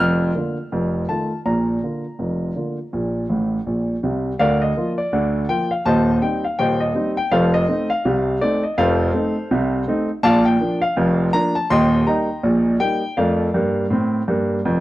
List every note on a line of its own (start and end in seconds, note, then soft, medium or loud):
0.00 0.30 F1 medium
0.00 0.30 F2 medium
0.00 0.87 F6 loud
0.35 0.55 D3 soft
0.35 0.56 A#3 soft
0.72 1.03 F1 medium
0.72 1.03 F2 medium
1.09 1.29 D#3 soft
1.09 1.30 A3 soft
1.09 1.30 F4 soft
1.09 1.38 A5 medium
1.46 1.77 A#1 medium
1.46 1.77 A#2 medium
1.46 3.99 A#5 medium
1.83 2.03 D3 soft
1.83 2.03 A#3 soft
1.83 2.04 F4 soft
2.19 2.50 F1 medium
2.19 2.50 F2 soft
2.56 2.76 D3 soft
2.56 2.76 A#3 soft
2.56 2.77 F4 soft
2.93 3.24 A#1 medium
2.93 3.24 A#2 medium
3.30 3.57 A1 medium
3.30 3.57 A2 medium
3.66 3.94 A#1 medium
3.66 3.94 A#2 medium
4.03 4.31 C2 medium
4.03 4.31 C3 medium
4.39 4.71 D2 medium
4.39 4.71 D3 medium
4.39 4.61 A#4 medium
4.39 4.60 D5 medium
4.39 4.61 F5 medium
4.62 4.91 D#5 medium
4.77 4.97 F3 soft
4.77 4.97 A#3 soft
4.77 4.97 F4 medium
4.98 5.47 D5 medium
5.13 5.44 D2 medium
5.13 5.44 D3 medium
5.49 5.69 F3 medium
5.49 5.70 A#3 soft
5.49 5.70 F4 medium
5.49 5.71 G5 medium
5.71 5.86 F5 medium
5.85 6.17 D#1 medium
5.85 6.17 D#2 medium
5.85 6.20 C5 medium
5.85 6.20 D#5 medium
5.85 6.15 A5 medium
6.22 6.42 G3 soft
6.22 6.43 C4 soft
6.22 6.43 D#4 medium
6.22 6.44 G5 medium
6.44 6.59 F5 medium
6.59 6.90 D#1 medium
6.59 6.90 D#2 medium
6.59 6.80 C5 medium
6.59 6.79 D#5 medium
6.59 6.81 G5 medium
6.80 7.10 D#5 medium
6.95 7.15 G3 soft
6.95 7.16 C4 medium
6.95 7.16 D#4 medium
7.17 7.32 G5 medium
7.32 7.63 F1 medium
7.32 7.63 F2 medium
7.32 7.53 A4 medium
7.32 7.53 C5 medium
7.32 7.54 F5 loud
7.54 7.89 D#5 loud
7.68 7.88 A3 soft
7.68 7.89 C4 soft
7.68 7.89 D#4 medium
7.90 8.39 F5 medium
8.05 8.36 C2 medium
8.05 8.36 C3 medium
8.41 8.62 A3 medium
8.41 8.62 C4 medium
8.41 8.62 D#4 medium
8.41 8.63 D5 medium
8.63 8.78 D#5 medium
8.78 9.09 F1 medium
8.78 9.09 F2 medium
8.78 9.84 A4 medium
8.78 9.84 C5 medium
8.78 9.84 F5 loud
9.14 9.34 A3 medium
9.14 9.35 C4 medium
9.14 9.35 D#4 medium
9.51 9.82 C2 medium
9.51 9.82 C3 medium
9.88 10.08 A3 medium
9.88 10.08 C4 medium
9.88 10.08 D#4 medium
10.23 10.55 A#1 medium
10.23 10.55 A#2 loud
10.23 10.44 D5 loud
10.23 10.45 F5 loud
10.23 10.45 A5 loud
10.45 10.80 G5 medium
10.60 10.80 F3 medium
10.60 10.81 A#3 medium
10.60 10.81 D4 medium
10.82 11.23 F5 loud
10.97 11.28 F1 medium
10.97 11.28 F2 medium
11.33 11.53 F3 medium
11.33 11.54 A#3 medium
11.33 11.54 D4 medium
11.33 11.55 A#5 loud
11.55 11.70 A5 medium
11.70 12.01 D#1 medium
11.70 12.01 D#2 loud
11.70 12.05 D#5 medium
11.70 12.05 G5 medium
11.70 12.05 C6 loud
12.07 12.27 G3 soft
12.07 12.27 A#3 soft
12.07 12.28 D#4 medium
12.07 12.77 D#5 medium
12.07 12.77 G5 medium
12.07 12.66 A#5 medium
12.43 12.75 A#1 medium
12.43 12.75 A#2 medium
12.80 13.00 G3 soft
12.80 13.01 A#3 medium
12.80 13.01 D#4 medium
12.80 13.15 G5 loud
13.17 13.47 F2 medium
13.17 13.48 A3 medium
13.17 14.80 A#4 medium
13.17 14.80 D5 medium
13.17 14.80 F5 medium
13.54 13.84 G2 medium
13.54 13.85 A#3 medium
13.90 14.20 A2 medium
13.90 14.21 C4 medium
14.28 14.57 G2 medium
14.28 14.59 A#3 medium
14.65 14.80 F1 medium
14.65 14.80 F2 medium